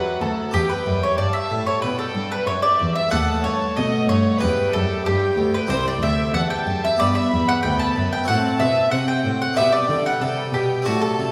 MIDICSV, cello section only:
0, 0, Header, 1, 2, 480
1, 0, Start_track
1, 0, Tempo, 645856
1, 400, Time_signature, 4, 2, 24, 8
1, 8412, End_track
2, 0, Start_track
2, 0, Title_t, "Cello section"
2, 0, Program_c, 0, 48
2, 0, Note_on_c, 0, 42, 52
2, 141, Note_off_c, 0, 42, 0
2, 160, Note_on_c, 0, 38, 53
2, 384, Note_off_c, 0, 38, 0
2, 399, Note_on_c, 0, 40, 58
2, 624, Note_off_c, 0, 40, 0
2, 645, Note_on_c, 0, 42, 54
2, 867, Note_off_c, 0, 42, 0
2, 883, Note_on_c, 0, 43, 58
2, 1104, Note_off_c, 0, 43, 0
2, 1121, Note_on_c, 0, 45, 56
2, 1342, Note_off_c, 0, 45, 0
2, 1360, Note_on_c, 0, 47, 58
2, 1581, Note_off_c, 0, 47, 0
2, 1601, Note_on_c, 0, 43, 61
2, 1821, Note_off_c, 0, 43, 0
2, 1838, Note_on_c, 0, 42, 55
2, 2061, Note_off_c, 0, 42, 0
2, 2081, Note_on_c, 0, 40, 56
2, 2304, Note_off_c, 0, 40, 0
2, 2319, Note_on_c, 0, 39, 63
2, 2544, Note_off_c, 0, 39, 0
2, 2562, Note_on_c, 0, 43, 61
2, 2786, Note_off_c, 0, 43, 0
2, 2804, Note_on_c, 0, 47, 64
2, 3026, Note_off_c, 0, 47, 0
2, 3045, Note_on_c, 0, 43, 59
2, 3266, Note_off_c, 0, 43, 0
2, 3287, Note_on_c, 0, 40, 63
2, 3507, Note_off_c, 0, 40, 0
2, 3523, Note_on_c, 0, 42, 59
2, 3744, Note_off_c, 0, 42, 0
2, 3764, Note_on_c, 0, 43, 59
2, 3984, Note_off_c, 0, 43, 0
2, 4001, Note_on_c, 0, 38, 54
2, 4222, Note_off_c, 0, 38, 0
2, 4237, Note_on_c, 0, 36, 67
2, 4461, Note_off_c, 0, 36, 0
2, 4476, Note_on_c, 0, 38, 62
2, 4700, Note_off_c, 0, 38, 0
2, 4715, Note_on_c, 0, 40, 61
2, 4939, Note_off_c, 0, 40, 0
2, 4956, Note_on_c, 0, 42, 59
2, 5179, Note_off_c, 0, 42, 0
2, 5197, Note_on_c, 0, 43, 58
2, 5419, Note_off_c, 0, 43, 0
2, 5437, Note_on_c, 0, 40, 59
2, 5660, Note_off_c, 0, 40, 0
2, 5678, Note_on_c, 0, 38, 58
2, 5899, Note_off_c, 0, 38, 0
2, 5919, Note_on_c, 0, 42, 55
2, 6139, Note_off_c, 0, 42, 0
2, 6154, Note_on_c, 0, 45, 61
2, 6376, Note_off_c, 0, 45, 0
2, 6394, Note_on_c, 0, 47, 57
2, 6616, Note_off_c, 0, 47, 0
2, 6632, Note_on_c, 0, 48, 60
2, 6856, Note_off_c, 0, 48, 0
2, 6872, Note_on_c, 0, 45, 59
2, 7096, Note_off_c, 0, 45, 0
2, 7115, Note_on_c, 0, 47, 60
2, 7338, Note_off_c, 0, 47, 0
2, 7356, Note_on_c, 0, 50, 58
2, 7579, Note_off_c, 0, 50, 0
2, 7593, Note_on_c, 0, 48, 55
2, 7817, Note_off_c, 0, 48, 0
2, 7834, Note_on_c, 0, 47, 53
2, 8057, Note_off_c, 0, 47, 0
2, 8075, Note_on_c, 0, 45, 60
2, 8299, Note_off_c, 0, 45, 0
2, 8317, Note_on_c, 0, 48, 52
2, 8412, Note_off_c, 0, 48, 0
2, 8412, End_track
0, 0, End_of_file